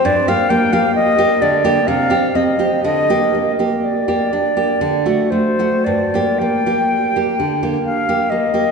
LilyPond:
<<
  \new Staff \with { instrumentName = "Flute" } { \time 3/4 \key g \minor \tempo 4 = 62 d''16 f''16 g''16 f''16 ees''8 d''8 f''8 ees''8 | ees''8. r16 d''4. c''8 | d''8 g''4. f''8 ees''8 | }
  \new Staff \with { instrumentName = "Nylon-string guitar" } { \time 3/4 \key g \minor g,16 <bes g'>16 bes16 <bes g'>8 <bes g'>16 d16 <bes g'>16 c16 <c' g'>16 c'16 <c' g'>16 | d16 <bes g'>16 bes16 <bes g'>8 <bes g'>16 d'16 <bes g'>16 d16 <a fis'>16 a16 <a fis'>16 | g,16 <bes g'>16 bes16 <bes g'>8 <bes g'>16 d16 <bes g'>8 <bes g'>16 bes16 <bes g'>16 | }
>>